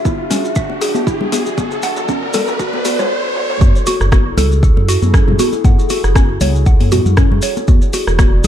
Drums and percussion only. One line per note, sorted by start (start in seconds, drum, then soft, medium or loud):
0.05 kick loud
0.05 mid tom medium
0.05 high conga medium
0.05 maracas medium
0.30 mid tom medium
0.30 open hi-hat medium
0.30 mid tom medium
0.30 muted conga soft
0.30 high conga medium
0.30 low conga loud
0.30 maracas medium
0.45 maracas soft
0.55 kick loud
0.55 mid tom medium
0.55 maracas medium
0.70 muted conga medium
0.81 open hi-hat medium
0.81 mid tom medium
0.81 maracas medium
0.95 mid tom medium
0.95 high conga loud
0.95 maracas soft
1.07 kick loud
1.07 mid tom medium
1.07 muted conga soft
1.07 maracas medium
1.21 high conga medium
1.21 low conga medium
1.32 open hi-hat medium
1.32 mid tom loud
1.32 high conga loud
1.32 maracas medium
1.46 muted conga soft
1.46 maracas soft
1.58 kick loud
1.58 mid tom medium
1.58 high conga loud
1.58 maracas medium
1.71 mid tom medium
1.71 maracas soft
1.83 open hi-hat medium
1.83 mid tom medium
1.83 muted conga soft
1.83 maracas medium
1.97 mid tom medium
1.97 maracas soft
2.08 kick loud
2.08 mid tom loud
2.08 high conga medium
2.08 maracas medium
2.23 mid tom medium
2.33 mid tom medium
2.33 open hi-hat medium
2.33 mid tom loud
2.33 muted conga soft
2.33 high conga medium
2.33 low conga loud
2.33 maracas medium
2.47 mid tom medium
2.47 maracas soft
2.59 kick loud
2.59 mid tom loud
2.59 maracas medium
2.73 mid tom medium
2.73 muted conga soft
2.73 high conga medium
2.85 open hi-hat medium
2.85 mid tom loud
2.85 high conga medium
2.85 maracas medium
2.99 mid tom medium
2.99 low conga medium
2.99 maracas soft
3.36 high tom medium
3.50 mid tom medium
3.61 kick loud
3.61 high conga loud
3.61 maracas medium
3.75 maracas soft
3.86 open hi-hat medium
3.86 muted conga medium
3.86 maracas loud
4.01 cross-stick medium
4.01 maracas soft
4.12 kick loud
4.12 cross-stick loud
4.12 high conga loud
4.12 maracas soft
4.37 open hi-hat loud
4.37 muted conga soft
4.37 high conga medium
4.37 low conga loud
4.37 maracas medium
4.52 maracas soft
4.63 kick loud
4.63 maracas soft
4.77 muted conga medium
4.88 open hi-hat medium
4.88 maracas medium
5.03 high conga loud
5.03 maracas soft
5.14 kick loud
5.14 cross-stick loud
5.14 muted conga soft
5.14 maracas medium
5.28 mid tom medium
5.28 high conga medium
5.28 low conga medium
5.39 open hi-hat medium
5.39 high conga loud
5.39 maracas loud
5.53 muted conga medium
5.53 maracas soft
5.65 kick loud
5.65 mid tom medium
5.65 high conga loud
5.65 maracas medium
5.79 maracas soft
5.89 open hi-hat medium
5.89 muted conga soft
5.89 maracas loud
6.04 cross-stick medium
6.04 maracas soft
6.15 kick loud
6.15 cross-stick loud
6.15 high conga medium
6.15 maracas medium
6.41 open hi-hat loud
6.41 muted conga soft
6.41 high conga medium
6.41 low conga loud
6.41 maracas loud
6.55 maracas soft
6.66 kick loud
6.66 maracas medium
6.80 open hi-hat medium
6.80 muted conga medium
6.80 high conga medium
6.92 mid tom medium
6.92 open hi-hat loud
6.92 high conga loud
6.92 maracas loud
7.06 low conga loud
7.06 maracas soft
7.17 kick loud
7.17 cross-stick loud
7.17 mid tom medium
7.17 muted conga soft
7.17 maracas medium
7.32 low conga loud
7.42 open hi-hat loud
7.42 maracas loud
7.57 muted conga medium
7.57 maracas soft
7.68 kick loud
7.68 high conga loud
7.68 maracas medium
7.82 maracas soft
7.93 open hi-hat medium
7.93 muted conga medium
7.93 maracas loud
8.07 cross-stick medium
8.07 maracas soft
8.19 kick loud
8.19 cross-stick loud
8.19 high conga loud
8.19 maracas medium
8.44 maracas medium